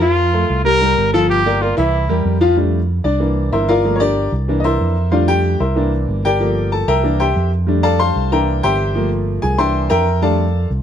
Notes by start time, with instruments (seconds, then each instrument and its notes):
Already playing: fingered electric bass F2
0.01 upright piano F3 F4 F5, trumpet F4
0.33 upright piano A3 A4 C5
0.50 fingered electric bass C2
0.65 upright piano G3 G4 A#4, trumpet A#4
0.81 upright piano G3 G4 A#4
0.98 fingered electric bass G1
1.13 upright piano F3 F4 F5, trumpet A4
1.30 trumpet G4
1.46 upright piano A#3 A#4 D5
1.61 upright piano A#3 A#4 D5, trumpet F4
1.77 fingered electric bass C2, upright piano E3 E4 E5, trumpet E4
2.09 fingered electric bass E2, upright piano G3 G4 A#4
2.25 fingered electric bass F2
2.41 upright piano F3 F4 F5
2.56 upright piano G3 A3 D4
3.04 fingered electric bass C2, upright piano D4 D5
3.20 upright piano E3 A#3 D4
3.52 fingered electric bass G1, upright piano E4 A#4 C5 E5
3.69 upright piano F4 A#4 D5 F5
3.84 upright piano F3 A3 A#3
3.96 upright piano C#5
4.00 upright piano D4 G4 A#4 D5
4.32 fingered electric bass C2
4.48 upright piano E3 A#3 D4
4.60 upright piano D#5
4.64 upright piano E4 A#4 C5 E5
4.81 fingered electric bass F2
5.11 upright piano G3 A3 D4 F4 C5 D5 F5
5.28 upright piano G4 G5
5.60 fingered electric bass C2, upright piano E4 A#4 C5 E5
5.75 upright piano E3 A#3 D4
6.08 fingered electric bass G1
6.25 upright piano G4 A#4 D5 G5
6.40 upright piano F3 A#3 A4
6.72 upright piano A4 A5
6.88 fingered electric bass C2, upright piano A#4 E5 G5 A#5
7.03 upright piano E3 A#3 D4
7.20 upright piano G4 C5 E5 G5
7.36 fingered electric bass F2
7.67 upright piano G3 A3 D4
7.83 upright piano A4 D5 F5 A5
7.99 upright piano C5 F5 A5 C6
8.16 fingered electric bass C2
8.32 upright piano E3 A#3 D4 A#4 E5 G5 A#5
8.63 fingered electric bass G1, upright piano G4 C5 E5 G5
8.95 upright piano F3 A3 A#3
9.42 fingered electric bass C2, upright piano G#4 G#5
9.58 upright piano E3 A#3 D4 C5 E5 G5 C6
9.90 fingered electric bass F2, upright piano A#4 E5 G5 A#5
10.22 upright piano G3 A3 D4 A4 D5 F5 A5
10.70 fingered electric bass C2